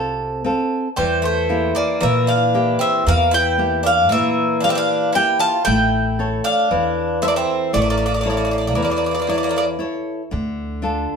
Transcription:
0.00 0.51 C2 medium
0.00 0.42 C3 medium
0.00 0.42 A3 medium
0.00 0.43 C4 soft
0.00 0.43 F4 soft
0.00 0.45 A4 medium
0.44 0.87 C4 medium
0.44 0.87 F4 soft
0.44 0.88 A4 medium
0.96 1.71 E2 medium
0.96 1.99 E3 medium
0.96 1.21 G3 medium
0.96 1.22 C5 medium
1.22 1.72 A3 medium
1.22 1.79 C5 medium
1.49 2.33 A#3 soft
1.49 2.33 E4 medium
1.49 2.34 G4 medium
1.75 1.99 A#3 medium
1.75 2.03 D5 medium
2.01 2.75 A#2 loud
2.01 3.03 E3 medium
2.01 2.26 A#3 medium
2.01 2.27 E5 medium
2.27 2.76 D4 medium
2.27 2.81 F5 medium
2.54 3.38 A#3 medium
2.54 3.38 E4 soft
2.54 3.38 G4 medium
2.79 3.04 C4 medium
2.79 3.08 E5 medium
3.07 4.11 E2 loud
3.07 4.08 E3 medium
3.07 3.31 A#3 medium
3.07 3.34 F5 medium
3.31 3.80 E4 medium
3.31 3.82 G5 medium
3.57 4.41 A#3 soft
3.57 4.42 E4 soft
3.57 4.42 G4 medium
3.83 4.08 D4 medium
3.83 4.10 F5 medium
4.09 5.20 A#2 medium
4.09 5.12 E3 medium
4.09 4.58 A#3 medium
4.09 4.64 E5 medium
4.61 5.14 A#3 soft
4.61 4.68 D4 medium
4.61 4.70 F5 medium
4.65 5.15 G4 medium
4.69 4.76 C4 medium
4.69 4.77 E5 medium
4.75 5.11 D4 medium
4.75 5.15 F5 medium
5.13 5.56 A#3 medium
5.13 5.38 E4 medium
5.13 5.57 E4 soft
5.13 5.57 G4 medium
5.13 5.39 G5 medium
5.39 5.64 F4 medium
5.39 5.64 A5 loud
5.65 6.39 A1 medium
5.65 6.67 A3 medium
5.65 6.40 E4 medium
5.65 6.40 G5 loud
6.19 7.02 A4 soft
6.19 7.02 C#5 medium
6.44 7.18 D4 medium
6.44 7.18 F5 medium
6.71 7.43 E2 medium
6.71 7.71 E3 medium
7.22 7.27 C4 medium
7.22 8.05 E4 medium
7.22 8.05 A4 soft
7.22 7.28 E5 medium
7.22 8.06 E5 medium
7.28 7.35 A#3 medium
7.28 7.36 D5 medium
7.36 7.72 C4 medium
7.36 7.74 E5 medium
7.73 8.78 A1 medium
7.73 8.74 A3 medium
7.73 7.82 A3 medium
7.73 7.81 D5 medium
7.82 7.89 A#3 soft
7.82 7.89 D5 medium
7.90 7.97 A#3 soft
7.90 7.96 D5 medium
7.97 8.05 A#3 soft
7.97 8.04 D5 medium
8.06 8.13 A#3 medium
8.06 8.12 D5 medium
8.14 8.20 A#3 soft
8.14 8.20 D5 medium
8.21 8.29 A#3 medium
8.21 8.28 D5 medium
8.25 9.08 E4 soft
8.25 9.08 A4 soft
8.25 9.09 C#5 medium
8.30 8.36 A#3 soft
8.30 8.36 D5 soft
8.37 8.44 A#3 soft
8.37 8.43 D5 medium
8.45 8.52 A#3 soft
8.45 8.50 D5 soft
8.51 8.59 A#3 soft
8.51 8.57 D5 medium
8.58 8.67 A#3 soft
8.58 8.65 D5 soft
8.67 8.74 A#3 soft
8.67 8.74 D5 medium
8.75 9.86 E2 medium
8.75 9.77 E3 medium
8.75 8.81 A#3 soft
8.75 8.82 D5 soft
8.83 8.89 A#3 soft
8.83 8.90 D5 soft
8.90 8.95 A#3 soft
8.90 8.96 D5 soft
8.97 9.03 A#3 soft
8.97 9.04 D5 soft
9.04 9.10 A#3 soft
9.04 9.12 D5 soft
9.11 9.18 A#3 soft
9.11 9.20 D5 medium
9.19 9.26 A#3 soft
9.19 9.28 D5 soft
9.27 9.33 A#3 soft
9.27 9.78 E4 soft
9.27 9.78 A4 soft
9.27 9.79 C#5 soft
9.27 9.35 D5 medium
9.34 9.41 A#3 soft
9.34 9.43 D5 medium
9.43 9.48 A#3 soft
9.43 9.49 D5 medium
9.49 9.55 A#3 soft
9.49 9.56 D5 medium
9.56 9.64 A#3 soft
9.56 9.65 D5 medium
9.79 10.21 E4 soft
9.79 10.21 A4 soft
9.79 10.22 C#5 medium
10.31 11.05 D2 medium
10.31 11.16 D3 medium
10.82 11.16 D4 soft
10.82 11.16 F4 soft
10.82 11.16 A4 medium

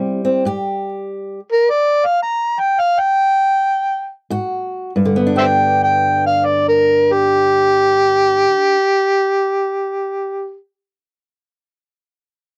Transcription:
0.00 0.40 C3 medium
0.00 1.39 G3 medium
0.00 0.23 C4 medium
0.00 0.45 E4 medium
0.00 0.25 G4 loud
0.25 0.43 C4 medium
0.45 0.89 G2 medium
0.45 1.39 G4 medium
1.52 1.71 A#4 medium
1.70 2.07 D5 medium
2.06 2.22 F5 medium
2.23 2.61 A#5 medium
2.60 2.81 G5 medium
2.80 3.01 F5 medium
2.99 4.10 G5 loud
4.30 4.89 G#2 medium
4.30 4.92 F#4 medium
4.96 8.46 G2 medium
5.05 8.55 D3 medium
5.16 8.66 B3 medium
5.27 8.77 D4 medium
5.36 8.86 G4 medium
5.36 5.46 C5 medium
5.36 5.44 E5 medium
5.36 5.80 G5 loud
5.83 6.25 G5 medium
6.26 6.47 F5 medium
6.45 6.67 D5 medium
6.68 7.14 A#4 medium
7.13 10.56 G4 loud

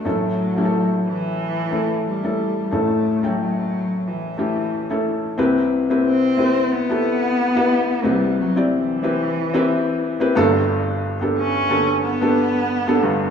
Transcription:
0.05 2.68 A1 soft
0.05 2.68 A2 medium
0.05 1.03 F#3 medium
0.05 0.53 A3 medium
0.05 0.53 C#4 medium
0.05 0.53 E4 medium
0.05 0.53 A4 medium
0.56 1.64 A3 medium
0.56 1.64 C#4 medium
0.56 1.65 E4 medium
0.56 0.63 G4 medium
0.65 1.68 A4 medium
1.08 2.03 E3 medium
1.71 2.19 A3 medium
1.71 2.19 C#4 medium
1.71 2.20 E4 medium
1.71 2.20 A4 medium
2.07 2.76 G3 medium
2.23 2.68 A3 medium
2.23 2.68 C#4 soft
2.23 2.69 E4 soft
2.23 2.69 A4 medium
2.71 5.34 A1 medium
2.71 5.34 A2 soft
2.71 3.19 A3 medium
2.71 3.27 A3 medium
2.71 3.20 C#4 medium
2.71 3.20 E4 soft
2.71 3.20 A4 medium
3.23 3.39 F#3 medium
3.23 4.30 A3 medium
3.23 4.31 C#4 medium
3.23 4.31 E4 medium
3.23 4.31 G5 medium
3.41 4.09 F#3 medium
4.07 5.06 E3 medium
4.38 4.86 A3 medium
4.38 4.86 C#4 medium
4.38 4.86 E4 medium
4.38 4.86 G4 medium
4.90 5.35 A3 medium
4.90 5.35 C#4 medium
4.90 5.35 E4 medium
4.90 5.35 A4 medium
5.38 8.00 C2 medium
5.38 8.00 C3 medium
5.38 5.86 C4 medium
5.38 5.86 E4 medium
5.38 5.86 G4 medium
5.38 5.86 B4 medium
5.90 6.35 C4 medium
5.90 6.35 E4 medium
5.90 6.35 G4 medium
5.90 6.35 B4 medium
6.06 6.74 C4 medium
6.37 6.85 C4 medium
6.37 6.86 E4 medium
6.37 6.86 G4 medium
6.37 6.86 B4 medium
6.72 8.08 B3 medium
6.89 7.51 B3 medium
6.89 7.51 E4 medium
6.89 7.51 G4 medium
6.89 7.52 A4 medium
7.55 8.00 B3 medium
7.55 8.01 E4 medium
7.55 8.01 G4 medium
7.55 8.01 B4 medium
8.03 10.33 C2 soft
8.03 10.33 C3 medium
8.03 8.38 G3 medium
8.03 8.52 C4 medium
8.03 8.52 E4 medium
8.03 8.52 G4 medium
8.03 8.52 B4 medium
8.40 8.54 F#3 medium
8.56 9.01 C4 medium
8.56 9.01 E4 medium
8.56 9.01 G4 medium
8.56 9.01 D5 medium
8.73 10.34 E3 medium
9.03 9.51 C4 medium
9.03 9.52 E4 medium
9.03 9.52 G4 medium
9.03 9.52 B4 medium
9.54 10.16 C4 medium
9.54 10.16 E4 medium
9.54 10.16 G4 medium
9.54 10.17 B4 medium
10.20 10.36 C4 medium
10.20 10.36 E4 medium
10.20 10.34 G4 medium
10.20 10.36 B4 medium
10.35 12.99 G1 medium
10.35 12.99 G2 medium
10.35 11.15 B3 medium
10.35 11.15 D4 medium
10.35 11.15 G4 medium
10.35 11.15 A4 loud
11.21 11.66 B3 medium
11.21 11.66 D4 medium
11.21 11.67 G4 medium
11.21 11.67 A4 medium
11.37 11.99 C#4 medium
11.69 12.18 D3 medium
11.69 12.17 B3 medium
11.69 12.18 G4 medium
11.69 12.18 A4 medium
12.03 13.30 B3 medium
12.21 12.83 B3 medium
12.21 12.83 D4 medium
12.21 12.83 G4 medium
12.21 12.84 A4 medium
12.87 13.30 B3 medium
12.87 13.30 D4 medium
12.87 13.30 G4 medium
12.87 13.30 A4 medium
13.03 13.30 G1 medium
13.03 13.30 G2 medium

